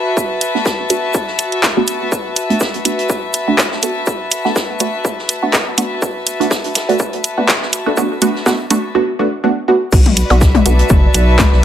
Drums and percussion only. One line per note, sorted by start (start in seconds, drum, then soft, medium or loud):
0.17 kick loud
0.17 shaker medium
0.41 closed hi-hat medium
0.41 shaker medium
0.55 snare soft
0.65 kick loud
0.65 snare loud
0.65 shaker medium
0.90 closed hi-hat medium
0.90 shaker medium
1.14 kick loud
1.14 shaker medium
1.27 snare soft
1.39 closed hi-hat medium
1.39 shaker medium
1.52 closed hi-hat soft
1.63 kick loud
1.63 snare loud
1.63 clap loud
1.63 shaker medium
1.87 closed hi-hat medium
1.87 shaker medium
2.12 kick loud
2.12 shaker medium
2.36 closed hi-hat medium
2.36 shaker medium
2.50 closed hi-hat soft
2.60 kick loud
2.60 snare loud
2.60 shaker medium
2.74 closed hi-hat soft
2.85 closed hi-hat medium
2.85 shaker medium
2.99 closed hi-hat soft
3.09 kick loud
3.09 shaker medium
3.33 closed hi-hat medium
3.33 shaker medium
3.58 kick loud
3.58 snare loud
3.58 clap medium
3.58 shaker medium
3.71 snare medium
3.83 closed hi-hat medium
3.83 shaker medium
4.06 kick loud
4.06 shaker medium
4.31 closed hi-hat medium
4.31 shaker medium
4.45 snare soft
4.56 kick loud
4.56 snare loud
4.56 shaker medium
4.80 closed hi-hat medium
4.80 shaker medium
5.05 kick loud
5.05 shaker medium
5.18 snare soft
5.29 closed hi-hat medium
5.29 shaker medium
5.53 kick loud
5.53 snare loud
5.53 clap medium
5.53 shaker medium
5.78 closed hi-hat medium
5.78 shaker medium
6.02 kick loud
6.02 shaker medium
6.27 closed hi-hat medium
6.27 shaker medium
6.41 closed hi-hat soft
6.50 kick loud
6.50 snare loud
6.50 shaker medium
6.64 closed hi-hat soft
6.75 snare loud
6.75 closed hi-hat medium
6.75 shaker medium
6.89 closed hi-hat soft
6.99 kick loud
6.99 shaker medium
7.13 closed hi-hat soft
7.24 closed hi-hat medium
7.24 shaker medium
7.49 kick loud
7.49 snare loud
7.49 clap loud
7.49 shaker medium
7.62 snare medium
7.73 closed hi-hat medium
7.73 shaker medium
7.97 kick loud
7.97 shaker medium
8.22 closed hi-hat medium
8.22 shaker medium
8.35 snare soft
8.46 kick loud
8.46 snare loud
8.46 shaker medium
8.71 closed hi-hat medium
8.71 shaker medium
9.92 kick loud
9.92 crash loud
9.92 shaker medium
10.06 closed hi-hat soft
10.06 high tom soft
10.17 closed hi-hat medium
10.17 shaker medium
10.30 closed hi-hat soft
10.30 percussion blips medium
10.41 kick loud
10.41 snare loud
10.41 shaker medium
10.55 closed hi-hat soft
10.55 high tom medium
10.66 closed hi-hat medium
10.66 shaker medium
10.79 closed hi-hat soft
10.89 kick loud
10.89 high tom soft
10.89 shaker medium
11.14 closed hi-hat medium
11.14 shaker medium
11.39 kick loud
11.39 snare loud
11.39 clap loud
11.39 high tom medium
11.39 shaker medium
11.52 snare medium